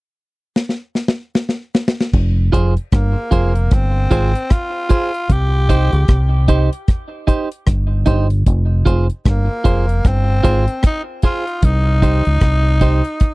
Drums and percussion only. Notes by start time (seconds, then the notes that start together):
0.56 snare
0.69 snare
0.95 snare
1.08 snare
1.35 snare
1.49 snare
1.75 snare
1.88 snare
2.01 snare
2.13 kick, crash
2.53 kick, closed hi-hat
2.77 closed hi-hat
2.92 kick, cross-stick, closed hi-hat
3.32 kick, closed hi-hat
3.55 closed hi-hat
3.71 kick, cross-stick, closed hi-hat
4.11 kick, closed hi-hat
4.35 closed hi-hat
4.50 kick, cross-stick, closed hi-hat
4.90 kick, closed hi-hat
5.14 closed hi-hat
5.30 kick, closed hi-hat
5.69 kick, closed hi-hat
5.93 closed hi-hat
6.08 kick, cross-stick, closed hi-hat
6.48 kick, closed hi-hat
6.73 closed hi-hat
6.88 kick, cross-stick, closed hi-hat
7.28 kick, closed hi-hat
7.52 closed hi-hat
7.67 kick, cross-stick, closed hi-hat
8.06 kick, closed hi-hat
8.30 closed hi-hat
8.46 kick, closed hi-hat
8.86 kick, closed hi-hat
9.10 closed hi-hat
9.25 kick, cross-stick, closed hi-hat
9.65 kick, closed hi-hat
9.89 closed hi-hat
10.05 kick, cross-stick, closed hi-hat
10.44 kick, closed hi-hat
10.68 closed hi-hat
10.83 kick, cross-stick, closed hi-hat
11.22 kick, closed hi-hat
11.47 closed hi-hat
11.62 kick, closed hi-hat
12.02 kick, closed hi-hat
12.25 closed hi-hat
12.41 kick, cross-stick, closed hi-hat
12.81 kick, closed hi-hat
13.05 closed hi-hat
13.20 kick, cross-stick, closed hi-hat